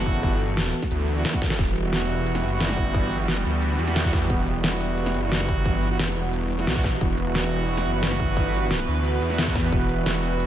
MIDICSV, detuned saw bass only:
0, 0, Header, 1, 2, 480
1, 0, Start_track
1, 0, Key_signature, 1, "minor"
1, 0, Tempo, 338983
1, 329, Time_signature, 4, 2, 24, 8
1, 14818, End_track
2, 0, Start_track
2, 0, Title_t, "Detuned saw bass"
2, 0, Program_c, 0, 39
2, 0, Note_on_c, 0, 30, 100
2, 310, Note_off_c, 0, 30, 0
2, 329, Note_on_c, 0, 31, 96
2, 1030, Note_off_c, 0, 31, 0
2, 1289, Note_on_c, 0, 38, 99
2, 1750, Note_off_c, 0, 38, 0
2, 2249, Note_on_c, 0, 28, 98
2, 3430, Note_off_c, 0, 28, 0
2, 3448, Note_on_c, 0, 30, 99
2, 4149, Note_off_c, 0, 30, 0
2, 4169, Note_on_c, 0, 31, 98
2, 4870, Note_off_c, 0, 31, 0
2, 4889, Note_on_c, 0, 38, 98
2, 5350, Note_off_c, 0, 38, 0
2, 5369, Note_on_c, 0, 40, 99
2, 6070, Note_off_c, 0, 40, 0
2, 6089, Note_on_c, 0, 28, 99
2, 7269, Note_off_c, 0, 28, 0
2, 7289, Note_on_c, 0, 30, 99
2, 7989, Note_off_c, 0, 30, 0
2, 8009, Note_on_c, 0, 31, 95
2, 8710, Note_off_c, 0, 31, 0
2, 8729, Note_on_c, 0, 28, 100
2, 9430, Note_off_c, 0, 28, 0
2, 9449, Note_on_c, 0, 35, 96
2, 9910, Note_off_c, 0, 35, 0
2, 9929, Note_on_c, 0, 28, 97
2, 11110, Note_off_c, 0, 28, 0
2, 11128, Note_on_c, 0, 30, 95
2, 11829, Note_off_c, 0, 30, 0
2, 11848, Note_on_c, 0, 31, 96
2, 12549, Note_off_c, 0, 31, 0
2, 12569, Note_on_c, 0, 38, 97
2, 13029, Note_off_c, 0, 38, 0
2, 13048, Note_on_c, 0, 40, 97
2, 13749, Note_off_c, 0, 40, 0
2, 13768, Note_on_c, 0, 28, 99
2, 14818, Note_off_c, 0, 28, 0
2, 14818, End_track
0, 0, End_of_file